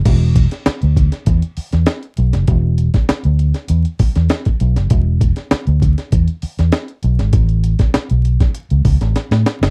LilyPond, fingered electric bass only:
\new Staff \with { instrumentName = "Fingered electric bass" } { \clef bass \time 4/4 \key e \mixolydian \tempo 4 = 99 e,,8. r8 d,8 r16 e,16 r8 e,16 r8 b,,16 fis,,16 | e,,8. r8 d,8 r16 e,16 r8 e,16 r8 b,,16 fis,,16 | e,,8. r8 d,8 r16 e,16 r8 e,16 r8 b,,16 gis,,16 | a,,8. r8 b,,8 r8 cis,16 cis,16 a,,16 r16 a,16 r16 fis,,16 | }